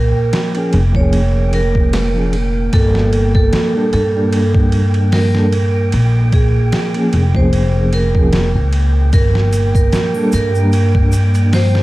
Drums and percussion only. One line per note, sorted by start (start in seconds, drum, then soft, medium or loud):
0.33 snare loud
0.33 ride medium
0.55 ride soft
0.73 ride medium
0.95 kick loud
1.13 ride medium
1.53 ride medium
1.75 kick medium
1.93 snare loud
1.93 ride medium
2.33 ride medium
2.73 kick loud
2.73 ride medium
2.95 snare medium
3.13 ride medium
3.35 kick loud
3.53 snare loud
3.53 ride medium
3.93 ride medium
4.33 ride medium
4.55 kick loud
4.72 ride medium
4.94 ride soft
5.12 snare loud
5.12 open hi-hat medium
5.35 snare soft
5.52 ride medium
5.92 ride medium
6.32 kick loud
6.32 ride medium
6.72 snare loud
6.72 ride medium
6.94 ride soft
7.13 ride medium
7.35 kick loud
7.53 ride medium
7.93 ride medium
8.15 kick medium
8.33 snare loud
8.33 ride medium
8.73 ride medium
9.13 kick loud
9.13 ride medium
9.13 shaker soft
9.35 snare medium
9.53 ride medium
9.53 shaker medium
9.75 kick loud
9.75 shaker medium
9.92 snare loud
9.92 ride medium
9.92 shaker soft
10.15 triangle medium
10.32 ride medium
10.32 shaker medium
10.55 shaker medium
10.72 ride medium
10.72 shaker soft
10.95 kick loud
11.12 ride medium
11.12 shaker medium
11.34 ride soft
11.34 shaker medium
11.53 snare loud
11.53 open hi-hat medium
11.53 shaker soft
11.75 snare medium